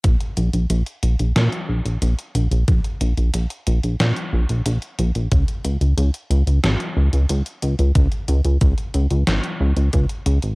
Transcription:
<<
  \new Staff \with { instrumentName = "Analog synth bass" } { \clef bass \time 4/4 \key des \major \tempo 4 = 91 bes,,16 r16 bes,,16 bes,,16 bes,,16 r16 bes,,16 bes,,16 bes,16 r16 bes,,16 bes,,16 bes,,16 r16 bes,,16 bes,,16 | bes,,16 r16 bes,,16 bes,,16 bes,,16 r16 bes,,16 bes,,16 bes,16 r16 bes,,16 bes,,16 bes,,16 r16 bes,,16 bes,,16 | des,16 r16 des,16 des,16 des,16 r16 des,16 des,16 aes,,16 r16 des,16 des,16 des,16 r16 des,16 des,16 | des,16 r16 des,16 des,16 des,16 r16 des,16 des,16 aes,,16 r16 des,16 des,16 des,16 r16 des,16 aes,,16 | }
  \new DrumStaff \with { instrumentName = "Drums" } \drummode { \time 4/4 <hh bd>16 hh16 hh16 hh16 hh16 hh16 hh16 hh16 <hh sn>16 hh8 hh16 hh16 hh16 hh16 hh16 | <hh bd>16 hh16 hh16 hh16 hh16 hh16 hh16 hh16 <hh sn>16 hh8 hh16 hh16 hh16 hh16 hh16 | <hh bd>16 hh16 hh16 hh16 hh16 hh16 hh16 hh16 <hh sn>16 hh8 hh16 hh16 hh16 hh16 hh16 | <hh bd>16 hh16 hh16 hh16 <hh bd>16 hh16 hh16 hh16 <hh sn>16 hh8 hh16 <hh bd>16 hh16 hh16 hh16 | }
>>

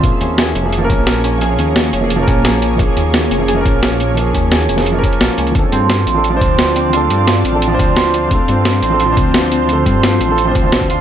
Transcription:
<<
  \new Staff \with { instrumentName = "Ambient pad" } { \time 4/4 \key bes \lydian \tempo 4 = 174 << { des''1~ | des''1~ | des''1~ | des''1 |
d''1~ | d''1 | c''1~ | c''1 | } \\ { <bes aes'>1~ | <bes aes'>1~ | <bes aes'>1~ | <bes aes'>1 |
<c' f'>1~ | <c' f'>1~ | <c' f'>1~ | <c' f'>1 | } >> }
  \new Staff \with { instrumentName = "Harp" } { \time 4/4 \key bes \lydian r8 des'8 aes'8 des'8 r8 des'8 r8 des'8 | aes'8 des'8 r8 des'8 r8 des'8 aes'8 des'8 | r8 des'8 r8 des'8 aes'8 des'8 r8 des'8 | r8 des'8 aes'8 des'8 r8 des'8 r8 des'8 |
r8 c'8 f'8 c'8 r8 c'8 r8 c'8 | f'8 c'8 r8 c'8 r8 c'8 f'8 c'8 | r8 c'8 r8 c'8 f'8 c'8 r8 c'8 | r8 c'8 f'8 c'8 r8 c'8 r8 f'8 | }
  \new Staff \with { instrumentName = "Grand piano" } { \time 4/4 \key bes \lydian <f bes des' aes'>4.~ <f bes des' aes'>16 <f bes des' aes'>16 r16 <f bes des' bes'>4.~ <f bes des' bes'>16 | <f bes des' aes'>4.~ <f bes des' aes'>16 <f bes des' aes'>16 r16 <f bes des' bes'>4.~ <f bes des' bes'>16 | <f bes des' aes'>4.~ <f bes des' aes'>16 <f bes des' aes'>16 r16 <f bes des' bes'>4.~ <f bes des' bes'>16 | <f bes des' aes'>4.~ <f bes des' aes'>16 <f bes des' aes'>16 r16 <f bes des' bes'>4.~ <f bes des' bes'>16 |
<f c' d' a'>4.~ <f c' d' a'>16 <f c' d' a'>16 r16 <f c' d' c''>4.~ <f c' d' c''>16 | <f c' d' a'>4.~ <f c' d' a'>16 <f c' d' a'>16 r16 <f c' d' c''>4.~ <f c' d' c''>16 | <f c' d' a'>4.~ <f c' d' a'>16 <f c' d' a'>16 r16 <f c' d' c''>4.~ <f c' d' c''>16 | <f c' d' a'>4.~ <f c' d' a'>16 <f c' d' a'>16 r16 <f c' d' c''>8 <f c' d' c''>8. <f c' d' d''>16 r16 | }
  \new Staff \with { instrumentName = "Detuned saw bass" } { \clef bass \time 4/4 \key bes \lydian bes,,16 r16 ees,4 f,,4 bes,,4.~ | bes,,8 ees,4 f,,4 bes,,4. | bes,,16 r16 ees,4 f,,4 bes,,4.~ | bes,,8 ees,4 f,,4 r8 bes,,16 r16 des,8 |
d,16 r16 g,4 a,,4 d,4.~ | d,8 g,4 a,,4 d,4. | d,16 r16 g,4 a,,4 d,4.~ | d,8 g,4 a,,4 d,8 a,,16 d,8. | }
  \new DrumStaff \with { instrumentName = "Drums" } \drummode { \time 4/4 <hh bd>8 hh8 <hh sn>8 hh8 hh8 <hh bd>8 <hh sn>8 hh8 | hh8 hh8 <hh sn>8 hh8 hh8 <hh bd>8 <hh sn>8 hh8 | <hh bd>8 hh8 <hh sn>8 hh8 hh8 <hh bd>8 <hh sn>8 hh8 | hh8 <hh bd>8 <hh sn>16 hh16 hh16 <hh sn>16 hh8 <hh bd>16 hh16 <hh sn>8 hh16 hh16 |
<hh bd>8 hh8 <hh sn>8 hh8 hh8 <hh bd>8 <hh sn>8 hh8 | hh8 hh8 <hh sn>8 hh8 hh8 <hh bd>8 <hh sn>8 hh8 | <hh bd>8 hh8 <hh sn>8 hh8 hh8 <hh bd>8 <hh sn>8 hh8 | hh8 <hh bd>8 <hh sn>8 hh8 hh8 <hh bd>8 <hh sn>16 bd16 hh8 | }
>>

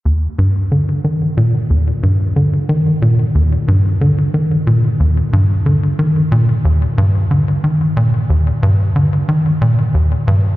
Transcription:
\new Staff \with { instrumentName = "Analog synth bass" } { \clef bass \time 4/4 \key ees \major \tempo 4 = 91 ees,8 g,8 d8 ees8 bes,8 ees,8 g,8 d8 | ees8 bes,8 ees,8 g,8 d8 ees8 bes,8 ees,8 | g,8 d8 ees8 bes,8 ees,8 g,8 d8 ees8 | bes,8 ees,8 g,8 d8 ees8 bes,8 ees,8 g,8 | }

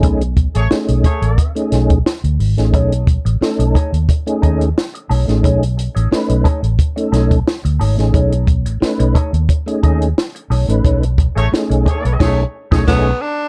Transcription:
<<
  \new Staff \with { instrumentName = "Horn section" } { \time 4/4 \key b \mixolydian \tempo 4 = 89 r8. <a gis' cis''>16 r8 <a gis' cis''>8. r4. r16 | r1 | r1 | r1 |
r8. <a gis' cis''>16 r8 <a gis' cis''>8 <a gis' cis''>8 r16 <a gis' cis''>16 <a gis' cis''>8 r8 | }
  \new Staff \with { instrumentName = "Clean electric guitar" } { \time 4/4 \key b \mixolydian r1 | <a dis' gis' cis''>8 r4 <a dis' gis' cis''>16 r8. <a dis' gis' dis''>16 r8. <a dis' gis' cis''>16 r16 | <a dis' gis' cis''>16 r8 <a dis' gis' cis''>16 r8 <a dis' gis' cis''>16 r8. <a dis' gis' cis''>16 r8. <a dis' gis' cis''>16 r16 | <a dis' gis' cis''>8 r4 <a dis' gis' cis''>16 r8. <a dis' gis' dis''>16 r8. <a dis' gis' cis''>16 r16 |
<a dis' gis' cis''>16 r8 <a dis' gis' cis''>16 r8 <a dis' gis' cis''>16 r16 <a dis' gis' cis''>8 r16 <a dis' gis' cis''>16 <a dis' gis' cis''>8 r8 | }
  \new Staff \with { instrumentName = "Tonewheel organ" } { \time 4/4 \key b \mixolydian <a cis' dis' gis'>16 r8. <a cis' dis' gis'>8 r8. <a cis' dis' gis'>8. r8. <a cis' dis' gis'>16~ | <a cis' dis' gis'>16 r8. <a cis' dis' a'>8 r8. <a cis' dis' gis'>8. r8. <a cis' dis' gis'>16~ | <a cis' dis' gis'>16 r8. <a cis' dis' b'>8 r8. <a cis' dis' a'>8. r8. <a cis' dis' gis'>16~ | <a cis' dis' gis'>16 r8. <a cis' dis' b'>8 r8. <a cis' dis' gis'>8. r8. <a cis' dis' b'>16~ |
<a cis' dis' b'>16 r8. <a cis' dis' gis'>8 r8 <a cis' dis' gis'>8 r16 <a cis' dis' gis'>16 <a cis' dis' gis'>8 r8 | }
  \new Staff \with { instrumentName = "Tenor saxophone" } { \time 4/4 \key b \mixolydian r1 | r1 | r1 | r1 |
r2. b8 d'8 | }
  \new Staff \with { instrumentName = "Fingered electric bass" } { \clef bass \time 4/4 \key b \mixolydian b,,8. a,,16 r16 b,,16 r16 a,,16 r8 b,,8 r16 d,16 gis,,16 a,,16 | b,,8. a,,16 r16 b,,16 r16 dis,16 r8 dis,8 r8 b,,16 a,,16 | b,,8. a,,16 r16 b,,16 r16 a,,16 r8 b,,8 r16 d,16 gis,,16 a,,16 | b,,8. a,,16 r16 b,,16 r16 dis,16 r8 dis,8 r8 b,,16 a,,16 |
b,,8. a,,16 r16 b,,16 r16 b,,16 b,,8 r16 b,,16 b,,8 r8 | }
  \new DrumStaff \with { instrumentName = "Drums" } \drummode { \time 4/4 <hh bd>16 hh16 <hh bd>16 hh16 sn16 hh16 <hh bd>16 hh16 <hh bd>16 hh16 <hh sn>16 <hh bd>16 sn16 hh16 hho16 <hh sn>16 | <hh bd>16 hh16 <hh bd>16 hh16 sn16 hh16 <hh bd>16 hh16 <hh bd>16 hh16 <hh bd>16 hh16 sn16 hh16 hho16 <hh sn>16 | <hh bd>16 hh16 hh16 hh16 sn16 hh16 <hh bd>16 hh16 <hh bd>16 hh16 <hh sn>16 <hh bd>16 sn16 hh16 hho16 <hh sn>16 | <hh bd>16 hh16 <hh bd>16 hh16 sn16 hh16 <hh bd>16 hh16 <hh bd>16 hh16 <hh bd>16 hh16 sn16 hh16 hho16 hh16 |
<hh bd>16 hh16 <hh bd>16 hh16 sn16 hh16 <hh bd>16 hh16 <cymc bd sn>8. <bd sn>16 <cymc bd sn>4 | }
>>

